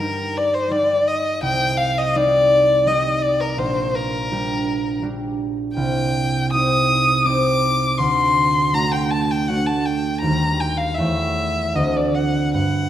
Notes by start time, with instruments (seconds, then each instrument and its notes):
Already playing: harp G2 A#4, violin A#4
0.00 harp G3 D#4 G4
0.37 violin D5
0.54 violin C5
0.70 harp G3 D#4 G4, violin D5
1.08 violin D#5
1.42 harp C2, violin G5
1.77 violin F5
1.98 violin D#5
2.15 harp G3 D#4 G4, violin D5
2.86 harp G3 D#4 G4, violin D#5
3.22 violin D5
3.40 violin A#4
3.57 harp A#1, violin C5
3.95 violin A#4
4.31 harp G3 D4 G4
5.02 harp G3 D4 G4
5.74 harp C2, violin G5
6.52 harp C4 D#4 G4, violin D#6
7.25 harp C4 D#4 G4, violin D6
7.98 harp D2, violin C6
8.72 harp A3 D4 F#4, violin A#5
8.92 violin G5
9.11 violin A5
9.31 violin G5
9.48 harp A3 D4 F#4, violin F#5
9.66 violin A5
9.85 violin G5
10.20 harp D#2, violin A#5
10.25 harp G3 G4 A#4
10.60 violin G5
10.77 violin F5
10.94 harp E2 A3, violin E5
10.99 harp G4 C#5
11.74 harp D2 C4 A4 D5, violin D#5
11.97 violin D5
12.14 violin F#5
12.54 harp G2, violin F#5